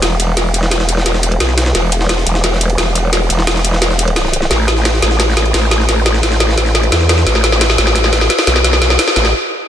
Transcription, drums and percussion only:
0.02 snare, closed hi-hat, ride
0.20 closed hi-hat, ride
0.37 snare, closed hi-hat, ride
0.54 closed hi-hat, ride
0.63 snare
0.71 snare, closed hi-hat, ride
0.80 snare
0.89 closed hi-hat, ride
0.97 snare
1.06 snare, closed hi-hat, ride
1.15 snare
1.23 closed hi-hat, ride
1.32 ride
1.40 snare, closed hi-hat, ride
1.49 snare
1.58 snare, closed hi-hat, ride
1.66 snare
1.75 snare, closed hi-hat, ride
1.92 closed hi-hat, ride
2.01 snare
2.09 snare, closed hi-hat, ride
2.18 snare
2.27 closed hi-hat, ride
2.35 snare
2.44 snare, closed hi-hat, ride
2.52 snare
2.61 closed hi-hat, ride
2.70 ride
2.78 snare, closed hi-hat, ride
2.95 closed hi-hat, ride
3.13 snare, closed hi-hat, ride
3.30 closed hi-hat, ride
3.39 snare
3.47 snare, closed hi-hat, ride
3.56 snare
3.64 closed hi-hat, ride
3.73 snare
3.82 snare, closed hi-hat, ride
3.90 snare
3.99 closed hi-hat, ride
4.08 ride
4.16 snare, closed hi-hat, ride
4.25 snare
4.33 closed hi-hat, ride
4.42 snare
4.51 snare, closed hi-hat, ride
4.68 snare, closed hi-hat, ride
4.77 snare
4.85 snare, closed hi-hat, ride
4.94 snare
5.02 snare, closed hi-hat, ride
5.11 snare
5.20 snare, closed hi-hat, ride
5.28 snare
5.37 snare, closed hi-hat, ride
5.46 ride
5.54 snare, closed hi-hat, ride
5.71 snare, closed hi-hat, ride
5.80 snare
5.89 snare, closed hi-hat, ride
6.06 snare, closed hi-hat, ride
6.14 snare
6.23 snare, closed hi-hat, ride
6.32 snare
6.40 snare, closed hi-hat, ride
6.49 snare
6.58 snare, closed hi-hat, ride
6.66 snare
6.75 snare, closed hi-hat, ride
6.83 ride
6.92 snare, closed hi-hat, ride
7.01 snare
7.09 snare, closed hi-hat, ride
7.18 snare
7.27 snare, closed hi-hat, ride
7.35 snare
7.44 snare, closed hi-hat, ride
7.52 snare
7.61 snare, closed hi-hat, ride
7.70 snare
7.78 snare, closed hi-hat, ride
7.87 snare
7.95 snare, closed hi-hat, ride
8.04 snare
8.13 snare, closed hi-hat, ride
8.21 snare
8.30 snare, closed hi-hat, ride
8.39 snare, ride
8.47 snare, closed hi-hat, ride
8.56 snare
8.64 snare, closed hi-hat, ride
8.73 snare
8.82 snare, closed hi-hat, ride
8.90 snare
8.99 snare, closed hi-hat, ride
9.08 snare
9.16 snare, closed hi-hat, ride
9.25 snare

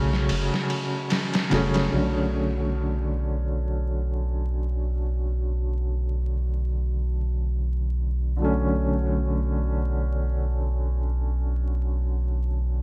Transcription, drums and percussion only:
0.13 snare
0.29 ride
0.54 snare
0.70 ride
1.10 snare, ride
1.34 snare, ride
1.51 snare, ride
1.74 snare, ride

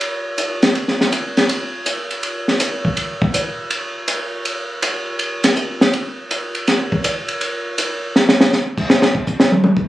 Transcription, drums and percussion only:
0.01 ride
0.38 hi-hat pedal, ride
0.62 snare, ride
0.75 ride
0.88 snare
1.01 snare
1.12 hi-hat pedal, ride
1.37 snare, ride
1.49 ride
1.86 hi-hat pedal, ride
2.11 ride
2.23 ride
2.48 snare
2.60 hi-hat pedal, ride
2.85 kick
2.97 ride
3.22 kick
3.34 hi-hat pedal, ride
3.71 ride
4.08 hi-hat pedal, ride
4.45 ride
4.82 hi-hat pedal, ride
5.19 ride
5.44 snare, ride
5.56 hi-hat pedal
5.81 snare
5.93 ride
6.31 hi-hat pedal, ride
6.55 ride
6.67 snare, ride
6.92 kick
7.04 hi-hat pedal, ride
7.28 ride
7.41 ride
7.78 hi-hat pedal, ride
8.16 snare
8.29 snare
8.41 snare
8.53 snare, hi-hat pedal
8.78 kick, crash
8.90 snare
9.02 snare
9.15 kick
9.27 kick, hi-hat pedal
9.40 snare
9.52 high tom
9.64 high tom
9.77 kick

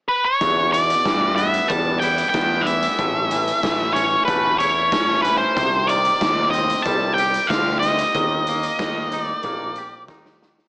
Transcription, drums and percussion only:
0.41 kick, closed hi-hat
0.74 closed hi-hat
0.90 closed hi-hat
1.06 kick, snare, closed hi-hat
1.38 closed hi-hat
1.54 closed hi-hat
1.70 kick, closed hi-hat
2.02 closed hi-hat
2.18 closed hi-hat
2.34 kick, snare, closed hi-hat
2.67 closed hi-hat
2.83 closed hi-hat
2.99 kick, closed hi-hat
3.31 closed hi-hat
3.48 closed hi-hat
3.63 kick, snare, closed hi-hat
3.96 closed hi-hat
4.28 kick, closed hi-hat
4.60 closed hi-hat
4.92 kick, snare, closed hi-hat
5.24 closed hi-hat
5.57 kick, closed hi-hat
5.89 closed hi-hat
6.05 closed hi-hat
6.21 kick, snare, closed hi-hat
6.53 closed hi-hat
6.70 closed hi-hat
6.85 kick, closed hi-hat
7.18 closed hi-hat
7.34 closed hi-hat
7.50 kick, snare, closed hi-hat
7.83 snare, closed hi-hat
7.98 closed hi-hat
8.15 kick, closed hi-hat
8.47 closed hi-hat
8.63 closed hi-hat
8.79 kick, snare, closed hi-hat
9.12 closed hi-hat
9.43 kick, closed hi-hat
9.75 closed hi-hat
10.08 kick, snare
10.26 snare
10.42 snare
10.58 snare

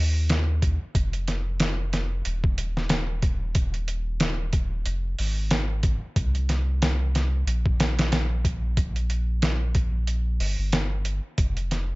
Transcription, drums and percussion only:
0.29 snare, closed hi-hat
0.62 kick, closed hi-hat
0.95 kick, closed hi-hat
1.13 closed hi-hat
1.28 snare, closed hi-hat
1.60 snare, closed hi-hat
1.93 snare, closed hi-hat
2.25 closed hi-hat
2.44 kick
2.58 closed hi-hat
2.77 snare
2.89 snare, closed hi-hat
3.22 kick, closed hi-hat
3.55 kick, closed hi-hat
3.74 closed hi-hat
3.88 closed hi-hat
4.20 snare, closed hi-hat
4.53 kick, closed hi-hat
4.86 closed hi-hat
5.19 open hi-hat
5.51 snare, closed hi-hat
5.83 kick, closed hi-hat
6.16 kick, closed hi-hat
6.35 closed hi-hat
6.49 snare, closed hi-hat
6.82 snare, closed hi-hat
7.15 snare, closed hi-hat
7.47 closed hi-hat
7.66 kick
7.80 snare, closed hi-hat
7.99 snare, closed hi-hat
8.12 snare, closed hi-hat
8.45 kick, closed hi-hat
8.77 kick, closed hi-hat
8.96 closed hi-hat
9.10 closed hi-hat
9.42 snare, closed hi-hat
9.75 kick, closed hi-hat
10.07 closed hi-hat
10.40 open hi-hat
10.72 snare, closed hi-hat
11.05 closed hi-hat
11.38 kick, closed hi-hat
11.57 closed hi-hat
11.71 snare, closed hi-hat

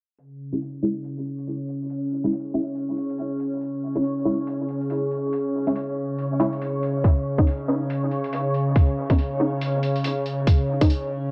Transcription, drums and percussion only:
0.19 closed hi-hat
0.53 closed hi-hat
0.61 closed hi-hat
1.04 closed hi-hat
1.26 closed hi-hat
1.39 closed hi-hat
1.47 closed hi-hat
1.69 closed hi-hat
1.90 closed hi-hat
2.24 closed hi-hat
2.33 closed hi-hat
2.75 closed hi-hat
2.97 closed hi-hat
3.10 closed hi-hat
3.18 closed hi-hat
3.40 closed hi-hat
3.61 closed hi-hat
3.96 closed hi-hat
4.04 closed hi-hat
4.47 closed hi-hat
4.69 closed hi-hat
4.81 closed hi-hat
4.90 closed hi-hat
5.11 closed hi-hat
5.33 closed hi-hat
5.67 closed hi-hat
5.76 closed hi-hat
6.18 closed hi-hat
6.40 closed hi-hat
6.53 closed hi-hat
6.62 closed hi-hat
6.83 closed hi-hat
7.04 kick, closed hi-hat
7.38 kick, closed hi-hat
7.47 closed hi-hat
7.90 closed hi-hat
8.11 closed hi-hat
8.24 closed hi-hat
8.33 closed hi-hat
8.54 closed hi-hat
8.76 kick, closed hi-hat
9.10 kick, closed hi-hat
9.19 closed hi-hat
9.61 closed hi-hat
9.83 closed hi-hat
9.96 closed hi-hat
10.04 closed hi-hat
10.26 closed hi-hat
10.47 kick, closed hi-hat
10.81 kick, closed hi-hat
10.90 closed hi-hat

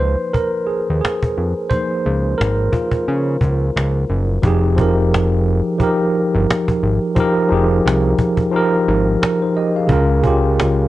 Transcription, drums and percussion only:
0.01 cajon slap
0.34 cajon bass, cajon slap
0.69 cajon slap
1.05 cajon slap
1.23 cajon bass
1.37 cajon slap
1.71 cajon bass
2.05 cajon slap
2.41 cajon slap
2.73 cajon bass
2.91 cajon bass
3.08 cajon slap
3.10 cajon slap
3.41 cajon bass
3.77 cajon slap
4.09 cajon slap
4.43 cajon bass
4.78 cajon bass
5.14 cajon slap
5.46 cajon slap
5.80 cajon bass, cajon slap
6.15 cajon slap
6.50 cajon slap
6.68 cajon bass
6.83 cajon slap
7.16 cajon bass
7.51 cajon slap
7.88 cajon slap
8.19 cajon bass
8.37 cajon bass
8.54 cajon slap
8.56 cajon slap
8.88 cajon slap
9.23 cajon slap
9.55 cajon slap
9.89 cajon bass
10.24 cajon bass
10.60 cajon slap

